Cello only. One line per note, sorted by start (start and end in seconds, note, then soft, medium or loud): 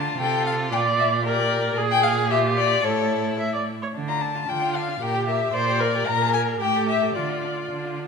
0.00 0.15 D3 medium
0.18 0.73 C3 medium
0.72 1.76 A#2 medium
1.77 2.81 A#2 medium
2.84 3.72 A2 medium
3.95 4.42 D3 medium
4.48 4.95 D3 medium
5.01 5.47 A#2 medium
5.53 6.00 A#2 medium
6.07 6.54 A#2 medium
6.60 7.09 A2 medium
7.15 7.64 D3 medium
7.71 8.07 D3 soft